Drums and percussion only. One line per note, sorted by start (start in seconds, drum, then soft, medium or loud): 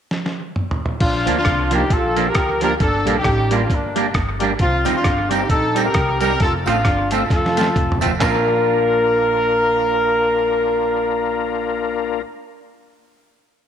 0.11 snare medium
0.26 snare soft
0.56 mid tom medium
0.71 floor tom loud
0.86 floor tom medium
1.00 kick loud
1.00 crash medium
1.27 closed hi-hat medium
1.45 kick loud
1.45 cross-stick loud
1.45 closed hi-hat medium
1.71 closed hi-hat medium
1.90 kick loud
1.90 closed hi-hat medium
2.17 closed hi-hat medium
2.35 kick loud
2.35 cross-stick loud
2.35 closed hi-hat medium
2.61 closed hi-hat medium
2.80 kick loud
2.80 closed hi-hat medium
3.07 closed hi-hat medium
3.24 kick loud
3.24 cross-stick loud
3.24 closed hi-hat medium
3.51 closed hi-hat medium
3.70 kick loud
3.70 closed hi-hat medium
3.96 closed hi-hat medium
4.14 kick loud
4.14 cross-stick loud
4.14 closed hi-hat medium
4.40 closed hi-hat medium
4.59 kick loud
4.59 closed hi-hat medium
4.85 closed hi-hat medium
4.85 tambourine medium
5.04 kick loud
5.04 cross-stick loud
5.04 closed hi-hat medium
5.31 closed hi-hat medium
5.31 tambourine medium
5.50 kick loud
5.50 closed hi-hat medium
5.76 closed hi-hat medium
5.76 tambourine medium
5.94 kick loud
5.94 cross-stick loud
5.94 closed hi-hat medium
6.21 closed hi-hat medium
6.21 tambourine medium
6.40 kick loud
6.40 closed hi-hat medium
6.66 cross-stick medium
6.66 closed hi-hat medium
6.66 tambourine medium
6.85 kick medium
6.85 cross-stick loud
6.85 closed hi-hat medium
7.11 closed hi-hat medium
7.11 tambourine medium
7.30 kick loud
7.30 snare medium
7.30 closed hi-hat medium
7.46 snare medium
7.57 closed hi-hat medium
7.57 tambourine medium
7.61 snare medium
7.76 kick loud
7.76 closed hi-hat medium
7.92 floor tom loud
8.01 closed hi-hat medium
8.01 tambourine medium
8.06 floor tom medium
8.21 kick loud
8.21 snare medium
8.21 clap medium
8.21 tambourine medium